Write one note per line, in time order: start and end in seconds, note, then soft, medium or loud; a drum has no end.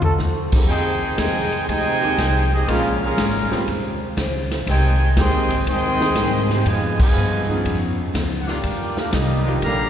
0.02 0.18 C2 medium
0.02 0.14 A4 loud
0.02 floor tom medium
0.18 0.67 D#2 loud
0.18 0.55 F2 medium
0.18 0.55 D#3 medium
0.18 0.56 A3 medium
0.18 0.56 C4 medium
0.18 snare medium
0.18 hi-hat pedal medium
0.52 0.68 F2 medium
0.52 0.68 G#3 soft
0.52 0.68 A#3 soft
0.52 0.68 C4 soft
0.52 0.68 D#4 soft
0.52 0.69 G4 medium
0.52 kick medium
0.52 crash medium
0.68 1.17 F2 medium
0.68 1.46 D#3 loud
0.68 1.04 F3 soft
0.68 1.46 G#3 loud
0.68 1.46 A#3 medium
0.68 1.05 A#3 medium
0.68 1.15 C4 medium
0.68 1.15 D#4 medium
0.68 1.15 D#4 loud
0.68 1.06 D#4 medium
0.68 1.15 G#4 medium
0.68 1.16 G#4 medium
0.68 1.46 G#4 loud
0.68 1.16 C5 loud
0.68 1.16 G5 loud
0.68 kick soft
0.73 1.06 G#4 medium
1.18 1.50 D#2 medium
1.18 1.67 C3 loud
1.18 1.68 D#3 medium
1.18 1.54 F3 medium
1.18 1.68 G#3 loud
1.18 1.55 A#3 medium
1.18 1.67 D#4 loud
1.18 1.55 D#4 medium
1.18 1.55 G#4 medium
1.18 1.67 C5 medium
1.18 1.67 G5 loud
1.18 1.67 G#5 loud
1.18 kick soft
1.18 snare medium
1.18 hi-hat pedal medium
1.18 ride medium
1.52 muted upright bass stroke soft
1.52 ride medium
1.68 2.17 D2 medium
1.68 2.48 C3 loud
1.68 2.04 F3 medium
1.68 2.49 G#3 loud
1.68 2.04 A#3 soft
1.68 2.48 D#4 loud
1.68 2.05 D#4 medium
1.68 2.06 G#4 medium
1.68 2.48 C5 loud
1.68 2.48 G5 loud
1.68 2.48 G#5 loud
1.68 kick soft
1.68 ride medium
2.00 2.13 D#3 loud
2.00 2.12 G#3 medium
2.00 2.17 G#3 medium
2.00 2.12 A#3 medium
2.00 2.17 A#3 medium
2.00 2.17 C4 medium
2.00 2.18 D#4 medium
2.00 2.12 G4 loud
2.00 2.17 G4 medium
2.18 2.67 C2 loud
2.18 2.54 F3 medium
2.18 2.54 A#3 medium
2.18 2.54 D#4 medium
2.18 2.55 G#4 medium
2.18 kick soft
2.18 snare medium
2.18 hi-hat pedal medium
2.18 ride medium
2.53 2.69 G#3 medium
2.53 2.69 C4 medium
2.53 2.69 D#4 medium
2.53 2.69 G4 medium
2.53 2.69 G#4 medium
2.53 2.69 D#5 medium
2.66 3.16 A#1 medium
2.66 3.03 A#2 medium
2.66 2.90 C#3 loud
2.66 2.90 G#3 medium
2.66 3.45 G#3 medium
2.66 3.04 G#3 medium
2.66 2.90 A#3 medium
2.66 3.45 A#3 medium
2.66 3.45 C#4 medium
2.66 2.90 F4 loud
2.66 3.45 F4 medium
2.66 3.45 C5 medium
2.66 kick soft
2.66 ride medium
2.70 3.01 G#3 medium
2.70 3.01 C#4 medium
2.70 3.05 C#4 medium
2.70 3.01 C#4 medium
2.70 3.01 F4 medium
2.70 3.05 F4 medium
2.70 3.01 G#4 medium
2.70 3.01 A#4 medium
2.70 3.01 F5 loud
3.02 3.64 G#3 medium
3.02 3.64 C#4 medium
3.02 3.65 C#4 medium
3.02 3.64 F4 medium
3.02 3.65 G#4 medium
3.02 3.65 A#4 medium
3.02 3.65 F5 loud
3.17 3.49 G#1 loud
3.17 3.53 A#2 medium
3.17 3.54 G#3 medium
3.17 3.54 C#4 medium
3.17 3.54 F4 medium
3.17 kick soft
3.17 snare medium
3.17 hi-hat pedal medium
3.17 ride medium
3.35 snare soft
3.51 3.62 C#3 medium
3.51 3.66 G3 medium
3.51 3.62 G3 medium
3.51 3.66 A#3 medium
3.51 3.66 C4 medium
3.51 3.62 C4 medium
3.51 3.66 C#4 medium
3.51 3.62 F4 medium
3.51 3.66 F4 medium
3.51 muted upright bass stroke soft
3.51 snare medium
3.67 4.16 D#2 medium
3.67 4.02 D#3 medium
3.67 4.03 C#4 medium
3.67 4.04 G4 medium
3.67 4.04 C5 medium
3.67 kick soft
3.67 ride medium
4.17 4.65 C#2 loud
4.17 4.52 D#3 medium
4.17 4.53 C#4 medium
4.17 4.53 G4 medium
4.17 4.54 C5 medium
4.17 kick soft
4.17 snare medium
4.17 hi-hat pedal medium
4.17 ride medium
4.51 snare medium
4.51 ride medium
4.65 5.15 C2 loud
4.65 5.01 G#2 medium
4.65 5.14 C3 medium
4.65 5.13 D#3 loud
4.65 4.90 D#3 medium
4.65 5.02 G3 medium
4.65 4.90 G#3 medium
4.65 5.14 G#3 medium
4.65 4.90 C4 medium
4.65 5.03 C4 medium
4.65 5.03 D#4 medium
4.65 4.90 G4 loud
4.65 kick soft
4.65 ride medium
4.69 5.15 D#4 medium
4.69 5.15 C5 loud
4.69 5.14 G5 medium
4.69 5.15 G#5 loud
5.15 5.34 D2 loud
5.15 5.51 G#2 medium
5.15 5.64 D#3 loud
5.15 5.52 G3 medium
5.15 5.47 G#3 medium
5.15 5.64 G#3 medium
5.15 5.48 A#3 medium
5.15 5.52 C4 medium
5.15 5.48 C4 medium
5.15 5.64 C4 loud
5.15 5.52 D#4 medium
5.15 5.48 D#4 medium
5.15 5.48 G4 medium
5.15 kick soft
5.15 snare medium
5.15 hi-hat pedal medium
5.15 ride medium
5.20 5.64 G#4 loud
5.20 5.64 D#5 medium
5.20 5.64 G5 loud
5.20 5.64 C6 loud
5.33 5.48 C2 medium
5.48 5.65 G#1 medium
5.48 6.12 D#3 loud
5.48 6.12 G#3 medium
5.48 6.12 C4 medium
5.48 6.12 G#4 loud
5.48 ride medium
5.66 6.15 D#2 medium
5.66 6.01 G#2 medium
5.66 6.47 D#3 loud
5.66 6.02 G3 medium
5.66 6.47 G#3 loud
5.66 6.02 C4 medium
5.66 6.47 C4 loud
5.66 6.03 D#4 medium
5.66 6.47 D#5 loud
5.66 6.47 G5 loud
5.66 6.47 C6 loud
5.66 kick soft
5.66 ride medium
5.70 6.48 G#4 loud
6.00 6.63 G#3 medium
6.00 6.63 A#3 medium
6.00 6.63 C4 medium
6.00 6.63 D#4 medium
6.00 6.63 G5 medium
6.00 snare medium
6.15 6.64 G#2 loud
6.15 6.51 G#2 medium
6.15 6.52 G3 medium
6.15 6.52 C4 medium
6.15 6.52 D#4 medium
6.15 kick soft
6.15 snare medium
6.15 hi-hat pedal medium
6.15 ride medium
6.50 6.67 C4 medium
6.50 6.67 D#4 medium
6.50 6.67 G4 medium
6.50 6.67 G#4 medium
6.50 6.67 C5 medium
6.50 6.67 G5 medium
6.50 snare medium
6.65 7.14 F2 loud
6.65 6.99 B2 medium
6.65 7.01 C#3 medium
6.65 7.00 F3 medium
6.65 7.02 F3 medium
6.65 7.00 G#3 medium
6.65 7.02 B3 medium
6.65 7.01 F4 medium
6.65 7.01 B4 medium
6.65 7.01 D#5 medium
6.65 7.01 G#5 loud
6.65 kick soft
6.65 ride medium
6.70 7.03 D#4 medium
7.00 7.61 B2 medium
7.00 7.62 F3 medium
7.00 7.62 F4 medium
7.00 7.61 G#4 medium
7.00 7.62 B4 medium
7.00 7.62 D#5 medium
7.00 7.62 G#5 loud
7.00 kick medium
7.00 crash medium
7.14 7.63 G2 loud
7.14 7.51 C#3 medium
7.14 7.51 F3 medium
7.14 7.51 B3 medium
7.14 7.52 D#4 medium
7.14 hi-hat pedal medium
7.49 8.11 F3 medium
7.49 8.11 B3 medium
7.49 8.12 C#4 medium
7.49 8.11 D#4 medium
7.49 8.11 G#4 medium
7.65 8.13 F2 medium
7.65 8.00 C#3 medium
7.65 8.01 F3 medium
7.65 8.01 B3 medium
7.65 kick soft
7.65 ride medium
7.69 8.02 D#4 medium
8.14 8.62 C#2 loud
8.14 8.49 C#3 medium
8.14 8.50 F3 medium
8.14 8.50 B3 medium
8.14 8.50 D#4 medium
8.14 kick soft
8.14 snare medium
8.14 hi-hat pedal medium
8.14 ride medium
8.40 8.49 F#5 medium
8.47 8.59 D#3 medium
8.47 8.59 G3 medium
8.47 8.93 A#3 medium
8.47 8.94 D4 medium
8.47 8.58 D4 medium
8.47 8.58 F4 loud
8.47 8.98 F4 medium
8.47 8.97 G4 medium
8.47 8.97 A#4 medium
8.47 8.98 D5 medium
8.47 8.98 G5 medium
8.47 snare medium
8.63 9.12 D#2 loud
8.63 8.99 D#3 medium
8.63 9.00 G3 medium
8.63 9.00 D4 medium
8.63 9.00 F4 medium
8.63 kick soft
8.63 ride medium
8.95 9.10 A#3 medium
8.95 9.12 D4 medium
8.95 9.14 D4 medium
8.95 9.12 F4 medium
8.95 9.13 G4 medium
8.95 9.14 A#4 medium
8.95 9.14 F5 medium
8.95 snare medium
9.11 9.61 C2 loud
9.11 9.49 D#3 medium
9.11 9.61 G3 medium
9.11 9.49 G3 medium
9.11 9.62 A#3 medium
9.11 9.63 A#3 medium
9.11 9.49 D4 medium
9.11 9.62 D#4 medium
9.11 9.63 F4 medium
9.11 9.62 G4 medium
9.11 9.63 D#5 medium
9.11 kick soft
9.11 snare medium
9.11 hi-hat pedal medium
9.11 ride medium
9.16 9.50 F4 medium
9.44 9.56 D#3 medium
9.44 9.62 F3 medium
9.44 9.56 G3 medium
9.44 9.62 A#3 medium
9.44 9.56 D4 medium
9.44 9.62 D4 medium
9.44 9.56 F4 loud
9.49 9.62 D#4 medium
9.49 9.62 G4 medium
9.62 9.89 A#1 loud
9.62 9.89 D3 medium
9.62 9.89 D#3 soft
9.62 9.89 G3 loud
9.62 9.89 G3 medium
9.62 9.89 A#3 medium
9.62 9.89 D4 medium
9.62 9.89 G4 medium
9.62 9.89 D5 medium
9.62 9.89 F5 medium
9.62 9.89 A#5 loud
9.62 kick soft
9.62 ride medium
9.66 9.89 F4 medium